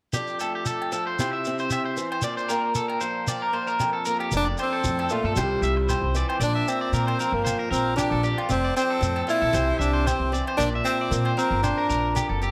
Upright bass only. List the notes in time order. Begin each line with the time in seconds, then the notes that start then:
4.33 F1
4.84 F2
5.24 G2
5.37 C2
5.62 C2
6.02 C2
6.40 A#1
6.92 A#2
7.32 G1
7.71 A#1
8.11 A#1
8.50 F1
9.02 F2
9.42 A#1
9.53 C2
9.80 C2
10.20 C2
10.59 A#1
11.11 A#2
11.51 G1
11.90 A#1
12.30 F#1